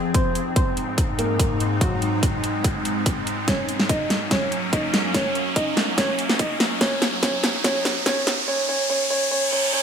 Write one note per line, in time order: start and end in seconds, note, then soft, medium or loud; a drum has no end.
0.00 0.11 F2 medium
0.00 0.11 F3 medium
0.00 3.44 C4 medium
0.00 0.11 G#4 medium
0.00 riser medium
0.14 3.44 G#2 medium
0.14 3.44 G#3 medium
0.14 0.39 C4 medium
0.14 3.44 D#4 medium
0.14 0.39 C5 loud
0.14 kick medium
0.14 closed hi-hat medium
0.35 closed hi-hat soft
0.56 1.11 C4 medium
0.56 1.11 C5 medium
0.56 kick loud
0.56 closed hi-hat medium
0.77 closed hi-hat medium
0.98 kick medium
0.98 closed hi-hat medium
1.19 1.73 A#3 medium
1.19 1.73 A#4 medium
1.19 closed hi-hat medium
1.39 kick medium
1.39 closed hi-hat medium
1.60 closed hi-hat medium
1.81 3.40 F#3 medium
1.81 3.40 F#4 medium
1.81 kick medium
1.81 closed hi-hat medium
2.02 closed hi-hat soft
2.23 kick loud
2.23 closed hi-hat medium
2.44 closed hi-hat soft
2.64 kick medium
2.64 closed hi-hat medium
2.85 closed hi-hat soft
3.06 kick medium
3.06 closed hi-hat medium
3.27 closed hi-hat soft
3.48 8.44 F#2 medium
3.48 6.78 F#3 medium
3.48 8.44 A#3 medium
3.48 6.78 C#4 medium
3.48 3.73 C#4 medium
3.48 3.73 C#5 medium
3.48 kick medium
3.48 snare soft
3.48 closed hi-hat medium
3.69 closed hi-hat soft
3.79 snare soft
3.89 4.30 D#4 medium
3.89 4.30 D#5 medium
3.89 kick loud
3.89 closed hi-hat medium
4.10 snare medium
4.10 closed hi-hat medium
4.31 4.56 C#4 medium
4.31 4.56 C#5 medium
4.31 kick medium
4.31 snare medium
4.31 closed hi-hat medium
4.52 closed hi-hat medium
4.73 5.13 D#4 medium
4.73 5.13 D#5 medium
4.73 kick medium
4.73 closed hi-hat medium
4.94 snare medium
4.94 closed hi-hat soft
5.14 5.39 C#4 medium
5.14 5.39 C#5 medium
5.14 kick loud
5.14 snare medium
5.14 closed hi-hat medium
5.35 closed hi-hat soft
5.56 5.96 D#4 medium
5.56 5.96 D#5 medium
5.56 kick loud
5.56 closed hi-hat medium
5.77 snare medium
5.77 closed hi-hat soft
5.98 6.23 C#4 medium
5.98 6.23 C#5 loud
5.98 kick medium
5.98 snare medium
5.98 closed hi-hat medium
6.19 closed hi-hat soft
6.29 snare medium
6.39 6.79 D#4 medium
6.39 6.79 D#5 medium
6.39 kick medium
6.39 closed hi-hat medium
6.60 snare medium
6.60 closed hi-hat soft
6.81 8.46 F#3 medium
6.81 7.06 C#4 medium
6.81 8.46 D#4 medium
6.81 7.06 C#5 loud
6.81 kick loud
6.81 snare medium
6.81 closed hi-hat medium
7.02 snare medium
7.02 closed hi-hat soft
7.23 7.48 C#4 medium
7.23 7.48 C#5 loud
7.23 kick loud
7.23 snare medium
7.23 closed hi-hat medium
7.44 snare medium
7.44 closed hi-hat medium
7.64 7.89 C#4 medium
7.64 7.89 C#5 loud
7.64 kick medium
7.64 snare medium
7.64 closed hi-hat medium
7.85 snare medium
7.85 closed hi-hat medium
8.06 8.31 C#4 medium
8.06 8.31 C#5 loud
8.06 kick medium
8.06 snare medium
8.06 closed hi-hat medium
8.27 snare medium
8.27 closed hi-hat medium
8.48 8.67 C#4 medium
8.48 8.67 C#5 loud
8.69 8.88 C#4 medium
8.69 8.88 C#5 loud
8.90 9.09 C#4 medium
8.90 9.09 C#5 loud
9.10 9.30 C#4 medium
9.10 9.30 C#5 loud
9.31 9.50 C#4 medium
9.31 9.50 C#5 loud
9.31 reverse cymbal medium
9.52 9.71 C#4 medium
9.52 9.71 C#5 loud
9.73 9.83 C#4 medium
9.73 9.83 C#5 loud